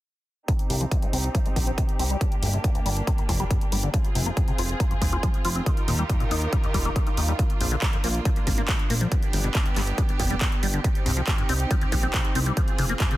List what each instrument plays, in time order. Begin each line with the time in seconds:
0.48 acid bass C3, string section C4 D#4 G4, kick, closed hi-hat
0.59 closed hi-hat
0.70 analog synth bass C2, acid bass G2, open hi-hat
0.81 acid bass F3, closed hi-hat
0.91 acid bass C2, kick, closed hi-hat
1.02 acid bass G2, closed hi-hat
1.13 analog synth bass C2, acid bass C4, open hi-hat
1.24 closed hi-hat
1.35 acid bass F3, kick, closed hi-hat
1.45 acid bass C2, closed hi-hat
1.56 analog synth bass A#1, acid bass D#3, kick, open hi-hat
1.67 acid bass C4, closed hi-hat
1.78 acid bass C3, kick, closed hi-hat
1.89 closed hi-hat
1.99 analog synth bass C2, acid bass C4, open hi-hat
2.10 acid bass G3
2.21 acid bass G2, string section A#3 D4, kick, closed hi-hat
2.32 closed hi-hat
2.42 analog synth bass G1, acid bass D2, open hi-hat
2.53 acid bass C3, closed hi-hat
2.64 acid bass G1, kick, closed hi-hat
2.75 acid bass D2, closed hi-hat
2.86 analog synth bass G1, acid bass G3, open hi-hat
2.97 closed hi-hat
3.07 acid bass C3, kick, closed hi-hat
3.18 acid bass G1, closed hi-hat
3.29 analog synth bass F1, acid bass A#2, kick, open hi-hat
3.40 acid bass G3, closed hi-hat
3.51 acid bass G2, kick, closed hi-hat
3.61 closed hi-hat
3.72 analog synth bass G1, acid bass G3, open hi-hat
3.83 acid bass D3, closed hi-hat
3.94 acid bass F3, string section C4 F4 G#4, kick, closed hi-hat
4.05 closed hi-hat
4.15 analog synth bass F1, acid bass C3, open hi-hat
4.26 acid bass A#3
4.37 acid bass F2, kick, closed hi-hat
4.48 acid bass C3, closed hi-hat
4.58 analog synth bass F1, acid bass F4, open hi-hat
4.69 closed hi-hat
4.80 acid bass A#3, kick, closed hi-hat
4.91 acid bass F2, closed hi-hat
5.02 analog synth bass D#1, acid bass G#3, kick, open hi-hat
5.12 acid bass F4, closed hi-hat
5.23 acid bass F3, kick, closed hi-hat
5.34 closed hi-hat
5.45 analog synth bass F1, acid bass F4, open hi-hat
5.55 acid bass C4, closed hi-hat
5.66 string section D#3 D#4 G4 A#4, acid bass D#3, kick, closed hi-hat
5.77 closed hi-hat
5.88 analog synth bass D#2, acid bass A#2, open hi-hat
5.99 acid bass G3, closed hi-hat
6.09 acid bass D#2, kick, closed hi-hat
6.20 acid bass A#2, closed hi-hat
6.31 analog synth bass D#2, acid bass D#4, open hi-hat
6.42 closed hi-hat
6.53 acid bass G3, kick, closed hi-hat
6.64 acid bass D#2, closed hi-hat
6.74 analog synth bass D#1, acid bass G3, kick, open hi-hat
6.85 acid bass A#3, closed hi-hat
6.96 acid bass A#2, kick, closed hi-hat
7.07 acid bass D#3, closed hi-hat
7.17 analog synth bass D#2, acid bass D#3, open hi-hat
7.28 acid bass G3, closed hi-hat
7.39 acid bass A#2, string section A#3 D4, kick, closed hi-hat
7.50 closed hi-hat
7.61 analog synth bass A#1, acid bass F2, open hi-hat
7.71 acid bass D3, closed hi-hat
7.82 acid bass A#1, kick, clap, closed hi-hat
7.93 acid bass F2, closed hi-hat
8.04 analog synth bass A#1, acid bass A#3, open hi-hat
8.15 closed hi-hat
8.25 acid bass D3, kick, closed hi-hat
8.36 acid bass A#1, closed hi-hat
8.47 analog synth bass G#1, acid bass D3, kick, open hi-hat
8.58 acid bass A#3, closed hi-hat
8.69 acid bass A#2, kick, clap, closed hi-hat
8.79 closed hi-hat
8.90 analog synth bass A#1, acid bass A#3, open hi-hat
9.01 acid bass F3, closed hi-hat
9.12 acid bass G2, string section B3 G4, kick, closed hi-hat
9.23 closed hi-hat
9.33 analog synth bass G1, acid bass D2, open hi-hat
9.44 acid bass B2
9.55 acid bass G1, kick, clap, closed hi-hat
9.66 acid bass D2, closed hi-hat
9.76 analog synth bass G1, acid bass G3, clap, open hi-hat
9.87 closed hi-hat
9.98 acid bass B2, kick, closed hi-hat
10.09 acid bass G1, closed hi-hat
10.20 analog synth bass F1, acid bass B2, kick, open hi-hat
10.30 acid bass G3, closed hi-hat
10.41 acid bass G2, kick, clap, closed hi-hat
10.52 closed hi-hat
10.63 analog synth bass G1, acid bass G3, open hi-hat
10.73 acid bass D3, closed hi-hat
10.84 acid bass C3, string section C4 D#4 G4, kick, closed hi-hat
10.95 closed hi-hat
11.06 analog synth bass C2, acid bass G2, open hi-hat
11.17 acid bass F3, closed hi-hat
11.27 acid bass C2, kick, clap, closed hi-hat
11.38 acid bass G2, closed hi-hat
11.49 analog synth bass C2, acid bass C4, open hi-hat
11.60 closed hi-hat
11.71 acid bass F3, kick, closed hi-hat
11.81 acid bass C2, closed hi-hat
11.92 analog synth bass A#1, acid bass D#3, kick, open hi-hat
12.03 acid bass C4, closed hi-hat
12.14 acid bass C3, kick, clap, closed hi-hat
12.25 closed hi-hat
12.35 analog synth bass C2, acid bass C4, open hi-hat
12.46 acid bass G3, closed hi-hat
12.57 acid bass F3, string section F4 G#4, kick, closed hi-hat
12.68 closed hi-hat
12.78 analog synth bass F1, acid bass C3, open hi-hat
12.89 acid bass A#3, closed hi-hat
13.00 acid bass F2, kick, clap, closed hi-hat
13.11 acid bass C3, closed hi-hat